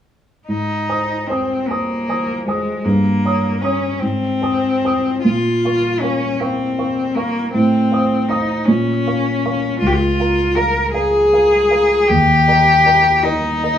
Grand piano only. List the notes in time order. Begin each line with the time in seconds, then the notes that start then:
0.48 G#2
0.89 C5 G#5 D#6
1.30 C5 G#5 D#6
1.71 C5 G#5 D#6
2.09 C5 G#5 D#6
2.48 C5 G#5 D#6
2.85 G2
3.25 C#5 A#5 D#6
3.62 C#5 A#5 D#6
4.02 G#2
4.42 C5 G#5 D#6
4.85 C5 G#5 D#6
5.25 A#2
5.65 A#4 F5 C#6
6.03 A#4 F5 C#6
6.40 A#4 F5 C#6
6.78 A#4 F5 C#6
7.16 A#4 F5 C#6
7.54 A2
7.92 C5 F5 D#6
8.30 C5 F5 D#6
8.68 A#2
9.07 A#4 F5 C#6
9.45 A#4 F5 C#6
9.82 C#2
10.20 A#4 F5 A#5
10.56 A#4 F5 A#5
10.94 A#4 F5 A#5
11.33 A#4 F5 A#5
11.70 A#4 F5 A#5
12.09 D#2
12.48 A#4 D#5 A#5
12.86 A#4 D#5 A#5
13.24 A#4 D#5 A#5
13.63 A#4 D#5 A#5